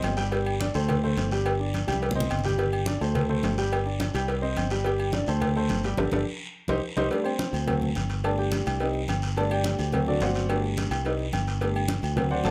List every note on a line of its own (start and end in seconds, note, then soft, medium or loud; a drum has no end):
0.00 0.69 G1 loud
0.00 0.12 C4 medium
0.00 0.12 C5 medium
0.00 0.13 D#5 medium
0.00 cowbell medium
0.00 high conga medium
0.00 short guiro medium
0.04 low timbale medium
0.04 low agogo loud
0.17 0.29 G3 medium
0.17 0.29 G4 medium
0.17 0.29 G5 loud
0.17 cowbell medium
0.17 high conga soft
0.17 short guiro medium
0.31 0.55 G3 medium
0.31 0.55 G4 medium
0.31 0.55 G5 medium
0.31 cowbell loud
0.31 high conga soft
0.31 low agogo medium
0.31 long guiro medium
0.46 high conga soft
0.46 low agogo loud
0.60 0.72 D4 medium
0.60 0.72 D5 medium
0.60 cowbell medium
0.60 high conga loud
0.60 short guiro medium
0.74 1.14 D2 loud
0.74 0.98 A3 medium
0.74 0.98 A4 medium
0.74 0.98 C5 medium
0.74 high conga soft
0.74 low agogo medium
0.74 short guiro medium
0.88 cowbell loud
0.88 high conga soft
0.88 low conga medium
0.88 low agogo loud
0.88 long guiro medium
1.04 1.27 A3 medium
1.04 1.27 A4 medium
1.04 1.27 C5 medium
1.04 high conga soft
1.17 1.83 G1 loud
1.17 cowbell medium
1.17 high conga medium
1.17 low agogo medium
1.17 short guiro medium
1.31 1.55 G3 medium
1.31 1.55 G4 medium
1.31 1.55 G5 medium
1.31 cowbell medium
1.31 high conga soft
1.31 short guiro medium
1.46 cowbell loud
1.46 high conga soft
1.46 low agogo loud
1.46 long guiro medium
1.60 1.83 D4 medium
1.60 1.83 D5 medium
1.60 high conga soft
1.74 cowbell medium
1.74 high conga medium
1.74 low agogo medium
1.74 short guiro medium
1.87 2.28 C2 medium
1.87 2.11 G3 medium
1.87 2.11 G4 medium
1.87 2.11 G5 medium
1.87 cowbell medium
1.87 low agogo loud
1.87 short guiro medium
1.93 high conga medium
2.02 cowbell loud
2.02 low agogo medium
2.02 long guiro medium
2.11 low conga medium
2.15 2.39 C4 medium
2.15 2.39 C5 medium
2.15 2.39 D#5 medium
2.20 low conga loud
2.30 2.96 G1 loud
2.30 cowbell medium
2.30 low agogo loud
2.30 short guiro medium
2.39 low conga medium
2.44 2.56 G3 medium
2.44 2.56 G4 medium
2.44 2.57 G5 medium
2.44 cowbell medium
2.44 short guiro medium
2.49 low conga medium
2.58 2.81 G3 medium
2.58 2.82 G4 medium
2.58 2.82 G5 medium
2.58 cowbell loud
2.58 high conga soft
2.58 low agogo medium
2.58 long guiro medium
2.73 high conga soft
2.73 low agogo loud
2.86 2.98 D4 medium
2.86 2.99 D5 medium
2.86 cowbell medium
2.86 high conga loud
2.86 short guiro medium
3.01 3.41 D2 loud
3.01 3.24 A3 medium
3.01 3.25 A4 medium
3.01 3.25 C5 medium
3.01 high conga soft
3.01 low agogo medium
3.01 short guiro medium
3.15 cowbell loud
3.15 high conga soft
3.15 low conga medium
3.15 low agogo medium
3.15 long guiro medium
3.29 3.53 A3 medium
3.29 3.53 A4 medium
3.29 3.53 C5 medium
3.29 high conga soft
3.43 4.09 G1 medium
3.43 cowbell medium
3.43 high conga medium
3.43 low timbale medium
3.43 low agogo medium
3.43 short guiro medium
3.57 3.81 G3 medium
3.57 3.81 G4 medium
3.57 3.82 G5 medium
3.57 cowbell medium
3.57 high conga soft
3.57 short guiro medium
3.71 cowbell loud
3.71 high conga soft
3.71 low agogo loud
3.71 long guiro medium
3.86 4.09 D4 medium
3.86 4.09 D5 medium
3.86 high conga soft
4.00 cowbell medium
4.00 high conga loud
4.00 low agogo medium
4.00 short guiro medium
4.14 4.54 C2 loud
4.14 4.38 G3 medium
4.14 4.38 G4 medium
4.14 4.38 G5 medium
4.14 cowbell medium
4.14 high conga soft
4.14 low agogo loud
4.14 short guiro medium
4.28 cowbell loud
4.28 high conga soft
4.28 low agogo medium
4.28 long guiro medium
4.42 4.65 C4 medium
4.42 4.66 C5 medium
4.42 4.66 D#5 medium
4.42 high conga soft
4.56 5.22 G1 medium
4.56 cowbell medium
4.56 high conga medium
4.56 low agogo loud
4.56 short guiro medium
4.70 4.83 G3 loud
4.70 4.83 G4 medium
4.70 4.83 G5 medium
4.70 cowbell medium
4.70 high conga soft
4.70 short guiro medium
4.84 5.08 G3 medium
4.84 5.09 G4 medium
4.84 5.09 G5 medium
4.84 cowbell loud
4.84 high conga soft
4.84 low agogo medium
4.84 long guiro medium
4.99 high conga soft
4.99 low agogo loud
5.12 5.25 D4 medium
5.12 5.25 D5 medium
5.12 cowbell medium
5.12 high conga loud
5.12 short guiro medium
5.26 5.67 D2 loud
5.26 5.51 A3 medium
5.26 5.51 A4 medium
5.26 5.51 C5 medium
5.26 high conga soft
5.26 low agogo medium
5.26 short guiro medium
5.40 cowbell loud
5.40 high conga soft
5.40 low conga medium
5.40 low agogo loud
5.40 long guiro medium
5.56 5.79 A3 medium
5.56 5.79 A4 medium
5.56 5.80 C5 medium
5.56 high conga soft
5.69 5.96 G1 loud
5.69 cowbell medium
5.69 high conga medium
5.69 low agogo medium
5.69 short guiro medium
5.83 5.96 G3 loud
5.83 5.96 G4 medium
5.83 5.96 G5 medium
5.83 cowbell medium
5.83 high conga soft
5.83 short guiro medium
5.97 6.09 G1 loud
5.97 6.07 D4 medium
5.97 6.07 G4 loud
5.97 6.07 A4 medium
5.97 cowbell loud
5.97 high conga loud
5.97 high timbale loud
5.97 long guiro medium
6.12 6.23 G1 loud
6.12 6.22 D4 loud
6.12 6.22 G4 medium
6.12 6.22 A4 medium
6.12 cowbell loud
6.12 high conga loud
6.12 high timbale loud
6.12 long guiro loud
6.68 6.79 C2 medium
6.68 6.78 D#4 loud
6.68 6.78 G4 loud
6.68 6.78 C5 loud
6.68 cowbell loud
6.68 high conga loud
6.68 high timbale loud
6.68 long guiro loud
6.97 7.08 C2 loud
6.97 7.06 D#4 loud
6.97 7.06 G4 medium
6.97 7.06 C5 loud
6.97 cowbell loud
6.97 high conga medium
6.97 high timbale medium
6.97 long guiro loud
7.10 7.29 G3 medium
7.10 7.30 A3 medium
7.10 7.30 D4 medium
7.10 7.25 G4 medium
7.10 7.25 A4 medium
7.10 7.25 D5 medium
7.10 cowbell loud
7.10 high conga soft
7.10 low agogo medium
7.10 long guiro medium
7.24 7.64 C4 medium
7.24 7.64 C5 medium
7.24 high conga soft
7.24 low agogo loud
7.39 cowbell medium
7.39 high conga loud
7.39 short guiro medium
7.53 7.92 D2 loud
7.53 high conga soft
7.53 low agogo medium
7.53 short guiro medium
7.67 7.86 F#3 medium
7.67 7.86 A3 medium
7.67 7.86 C4 medium
7.67 cowbell loud
7.67 high conga soft
7.67 low conga medium
7.67 low agogo loud
7.67 long guiro medium
7.82 high conga soft
7.82 low conga medium
7.95 8.61 G1 medium
7.95 cowbell medium
7.95 high conga medium
7.95 low agogo medium
7.95 short guiro medium
8.09 cowbell medium
8.09 high conga soft
8.09 short guiro medium
8.24 8.77 G3 medium
8.24 8.78 A3 soft
8.24 8.78 D4 medium
8.24 8.38 A4 medium
8.24 8.37 D5 medium
8.24 8.38 A5 medium
8.24 cowbell loud
8.24 high conga soft
8.24 low agogo loud
8.24 long guiro medium
8.38 8.78 G4 medium
8.38 8.78 D5 medium
8.38 8.77 G5 medium
8.38 high conga soft
8.52 cowbell medium
8.52 high conga loud
8.52 low agogo medium
8.52 short guiro medium
8.66 9.06 C2 loud
8.66 cowbell medium
8.66 high conga soft
8.66 low agogo loud
8.66 short guiro medium
8.80 8.99 G3 medium
8.80 8.99 C4 medium
8.80 9.00 D#4 medium
8.80 cowbell loud
8.80 high conga soft
8.80 low agogo medium
8.80 long guiro medium
8.94 high conga soft
9.08 9.73 G1 medium
9.08 cowbell medium
9.08 high conga medium
9.08 low agogo loud
9.08 short guiro medium
9.22 cowbell medium
9.22 high conga soft
9.22 short guiro medium
9.36 9.77 G3 medium
9.36 9.77 A3 medium
9.36 9.77 D4 medium
9.36 9.51 A4 medium
9.36 9.50 D5 medium
9.36 9.50 A5 medium
9.36 cowbell loud
9.36 high conga soft
9.36 low agogo medium
9.36 long guiro medium
9.50 9.90 G4 medium
9.50 9.90 D5 medium
9.50 9.90 G5 medium
9.50 high conga soft
9.50 low agogo loud
9.64 cowbell medium
9.64 high conga loud
9.64 short guiro medium
9.78 10.18 D2 loud
9.78 high conga soft
9.78 low agogo medium
9.78 short guiro medium
9.92 10.46 F#3 medium
9.92 10.46 A3 medium
9.92 10.47 C4 medium
9.92 cowbell loud
9.92 high conga soft
9.92 low conga medium
9.92 low agogo loud
9.92 long guiro medium
10.06 10.21 D4 medium
10.06 10.20 F#4 medium
10.06 10.21 A4 medium
10.06 10.20 D5 medium
10.06 high conga soft
10.20 10.86 G1 loud
10.20 10.61 F#4 medium
10.20 10.61 C5 medium
10.20 10.61 D5 medium
10.20 10.60 F#5 medium
10.20 cowbell medium
10.20 high conga medium
10.20 low timbale medium
10.20 low agogo medium
10.20 short guiro medium
10.35 cowbell medium
10.35 high conga soft
10.35 short guiro medium
10.48 10.89 G3 medium
10.48 10.89 A3 medium
10.48 10.89 D4 medium
10.48 cowbell loud
10.48 high conga soft
10.48 low agogo loud
10.48 long guiro medium
10.64 high conga soft
10.77 cowbell medium
10.77 high conga medium
10.77 low agogo medium
10.77 short guiro medium
10.91 11.30 C2 loud
10.91 cowbell medium
10.91 high conga soft
10.91 low agogo loud
10.91 short guiro medium
11.04 11.23 G3 medium
11.04 11.24 C4 medium
11.04 11.24 D#4 medium
11.04 cowbell loud
11.04 high conga soft
11.04 low agogo medium
11.04 long guiro medium
11.19 high conga soft
11.33 11.98 G1 loud
11.33 cowbell medium
11.33 high conga medium
11.33 low agogo loud
11.33 short guiro medium
11.47 cowbell medium
11.47 high conga soft
11.47 short guiro medium
11.61 11.80 G3 medium
11.61 11.80 A3 soft
11.61 11.80 D4 medium
11.61 cowbell loud
11.61 high conga soft
11.61 low agogo medium
11.61 long guiro medium
11.75 high conga soft
11.75 low agogo loud
11.88 cowbell medium
11.88 high conga loud
11.88 short guiro medium
12.02 12.42 D2 loud
12.02 high conga soft
12.02 low agogo medium
12.02 short guiro medium
12.16 12.35 F#3 medium
12.16 12.36 A3 medium
12.16 12.36 C4 medium
12.16 cowbell loud
12.16 high conga soft
12.16 low conga medium
12.16 low agogo loud
12.16 long guiro medium
12.30 12.45 F#4 medium
12.30 12.45 C5 medium
12.30 12.43 D5 medium
12.30 12.43 F#5 medium
12.30 high conga soft
12.44 12.51 G1 medium
12.44 12.51 A4 medium
12.44 12.51 D5 medium
12.44 12.51 F#5 medium
12.44 12.51 A5 loud
12.44 cowbell medium
12.44 high conga medium
12.44 low timbale medium
12.44 low agogo medium
12.44 short guiro medium